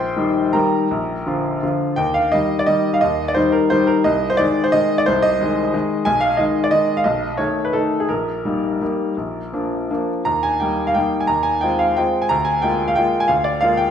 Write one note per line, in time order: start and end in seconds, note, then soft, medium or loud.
0.00 0.15 A#1 medium
0.00 0.50 C5 medium
0.00 0.50 G5 medium
0.00 0.53 C6 medium
0.16 0.50 D#3 soft
0.16 0.51 G3 soft
0.16 0.51 D#4 soft
0.53 0.87 D#3 soft
0.53 0.87 G3 soft
0.53 0.88 D#4 soft
0.53 1.58 A#4 soft
0.53 1.58 G5 soft
0.53 1.62 A#5 medium
0.91 1.25 A#1 medium
1.27 1.59 D3 soft
1.27 1.59 F3 soft
1.27 1.59 F4 soft
1.63 1.95 D3 soft
1.63 1.95 F3 soft
1.63 1.95 F4 soft
1.96 2.32 D#2 medium
1.96 2.14 G5 medium
2.14 2.32 F5 medium
2.32 2.65 D#3 soft
2.32 2.66 G3 soft
2.32 2.66 D#4 soft
2.32 2.59 D#5 medium
2.59 2.68 D5 medium
2.66 2.99 D#3 soft
2.66 2.99 G3 soft
2.66 2.99 D#4 soft
2.66 2.93 D#5 medium
2.94 3.02 F5 medium
3.01 3.36 D#2 medium
3.01 3.27 D#5 medium
3.28 3.37 D5 medium
3.35 3.68 D#3 soft
3.35 3.68 G3 soft
3.35 3.68 D#4 soft
3.35 3.53 C5 medium
3.52 3.71 A#4 medium
3.70 4.02 D#3 soft
3.70 4.03 G3 soft
3.70 4.03 D#4 soft
3.70 3.88 C5 medium
3.87 4.05 A#4 medium
4.04 4.38 C2 medium
4.04 4.30 D#5 medium
4.30 4.39 C5 medium
4.37 4.70 D#3 soft
4.37 4.70 G#3 soft
4.37 4.70 D#4 medium
4.37 4.64 D5 medium
4.64 4.73 C5 medium
4.72 5.04 D#3 soft
4.72 5.04 G#3 soft
4.72 5.05 D#4 medium
4.72 4.98 D#5 medium
4.98 5.07 D5 medium
5.06 5.39 C2 medium
5.06 5.23 C5 medium
5.22 6.07 D#5 medium
5.40 5.71 D#3 soft
5.40 5.71 G#3 soft
5.40 5.71 D#4 soft
5.74 6.04 D#3 soft
5.74 6.04 G#3 soft
5.74 6.04 D#4 soft
6.05 6.39 B1 medium
6.05 6.22 G#5 medium
6.21 6.39 F5 medium
6.37 6.69 D#3 soft
6.37 6.69 G#3 soft
6.37 6.70 D#4 soft
6.37 6.64 D#5 medium
6.64 6.73 D5 medium
6.71 7.02 D#3 soft
6.71 7.02 G#3 soft
6.71 7.03 D#4 soft
6.71 6.97 D#5 medium
6.97 7.05 F5 medium
7.04 7.38 B1 medium
7.04 7.38 D#5 medium
7.37 7.70 D#3 soft
7.37 7.70 A3 soft
7.37 7.71 D#4 soft
7.37 7.64 C#5 medium
7.65 7.74 B4 medium
7.73 8.06 D#3 soft
7.73 8.06 A3 soft
7.73 8.07 D#4 soft
7.73 8.00 A4 medium
8.00 8.09 G#4 medium
8.09 8.44 A#1 soft
8.09 10.08 A#4 medium
8.45 8.78 G3 soft
8.45 8.78 A#3 soft
8.45 8.78 D#4 soft
8.81 9.13 G3 soft
8.81 9.14 A#3 soft
8.81 9.14 D#4 soft
9.17 9.51 A#1 soft
9.53 9.86 F3 soft
9.53 9.86 A#3 soft
9.53 9.87 D4 soft
9.90 10.23 F3 soft
9.90 10.23 A#3 soft
9.90 10.23 D4 soft
10.25 10.59 D#2 soft
10.25 10.43 A#5 medium
10.43 10.60 G#5 medium
10.60 10.92 G3 soft
10.60 10.92 A#3 soft
10.60 10.93 D#4 soft
10.60 10.86 G5 medium
10.87 10.95 F5 medium
10.94 11.26 G3 soft
10.94 11.26 A#3 soft
10.94 11.27 D#4 soft
10.94 11.21 G5 medium
11.20 11.29 G#5 medium
11.27 11.61 D#2 soft
11.27 11.45 A#5 medium
11.43 11.61 G#5 medium
11.61 11.94 G#3 soft
11.61 11.94 C4 soft
11.61 11.94 F4 soft
11.61 11.79 G5 medium
11.79 11.97 F5 medium
11.97 12.27 G#3 soft
11.97 12.27 C4 soft
11.97 12.27 F4 soft
11.97 12.21 G5 medium
12.22 12.30 G#5 medium
12.29 12.62 D2 soft
12.29 12.45 A#5 medium
12.45 12.62 G#5 medium
12.62 12.93 G#3 soft
12.62 12.93 A#3 soft
12.62 12.93 F4 soft
12.62 12.87 G5 medium
12.88 12.96 F5 medium
12.96 13.26 G#3 soft
12.96 13.26 A#3 soft
12.96 13.26 F4 soft
12.96 13.20 G5 medium
13.20 13.28 G#5 medium
13.28 13.60 D2 medium
13.28 13.44 F5 medium
13.44 13.61 D5 medium
13.61 13.91 G#3 soft
13.61 13.91 A#3 soft
13.61 13.91 F4 soft
13.61 13.78 F5 medium
13.77 13.91 G5 medium